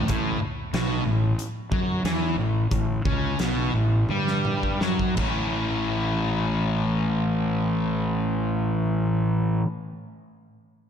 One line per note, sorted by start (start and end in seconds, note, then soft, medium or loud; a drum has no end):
0.08 0.39 A1 medium
0.08 0.41 A2 loud
0.08 kick medium
0.08 closed hi-hat medium
0.41 muted fingered electric bass stroke soft
0.41 muted distorted electric guitar stroke soft
0.73 1.04 B1 medium
0.73 1.05 B2 medium
0.73 snare loud
0.73 closed hi-hat medium
1.06 1.36 A1 medium
1.06 1.32 A2 medium
1.39 closed hi-hat medium
1.72 2.02 F#2 medium
1.72 2.03 F#3 medium
1.72 kick medium
2.04 2.35 E2 medium
2.04 2.36 E3 medium
2.04 snare medium
2.04 closed hi-hat medium
2.36 2.68 A1 medium
2.36 2.64 A2 medium
2.71 3.02 A1 medium
2.71 2.98 A2 medium
2.71 kick medium
2.71 closed hi-hat medium
3.05 3.37 C#2 medium
3.05 3.38 C#3 medium
3.05 kick medium
3.39 3.72 B1 medium
3.39 3.73 B2 medium
3.39 snare medium
3.39 closed hi-hat soft
3.74 4.07 A1 medium
3.74 4.02 A2 medium
4.09 4.77 G2 medium
4.09 4.80 G3 medium
4.09 high tom soft
4.27 snare soft
4.45 mid tom medium
4.63 kick soft
4.80 5.15 F#2 medium
4.80 5.16 F#3 medium
4.80 snare medium
4.99 kick medium
5.17 9.61 A1 medium
5.17 9.64 A2 medium
5.17 9.65 E3 medium
5.17 9.66 A3 medium
5.17 9.67 C#4 medium
5.17 kick medium
5.17 crash medium
5.21 9.68 E4 medium